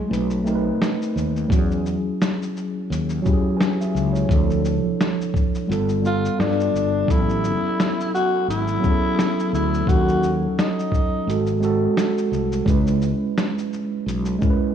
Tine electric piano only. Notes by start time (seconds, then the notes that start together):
Already playing: F#3 A3 E4 G#4
0.08 A3 C4 D#4
0.13 B4
0.44 A3 C4 D#4
0.49 A#4
0.55 B4
1.48 F#3 C#4 E4
1.52 F#4
1.59 G#4
3.22 F#3 C#4 E4
3.27 G4
3.33 G#4
3.57 B4 G#5
3.81 G#4 E5
4.13 E4 C#5
4.29 F3 C4 D4
4.33 A4
5.67 G3 B3 F4
5.72 A4
6.02 G3 B3 F4
6.06 A4
7.06 F#3 B3 C#4
7.11 A4
8.79 F#3 B3 C#4
8.83 G#4
8.90 A4
9.85 F#3 C#4 D#4
9.90 A4
11.26 G#3 C4 F#4
11.31 A4
11.60 G#3 C4 F#4
11.65 A4
12.65 G#3 C#4 E4
12.69 B4
14.39 G#3 C#4 E4
14.44 A#4
14.50 B4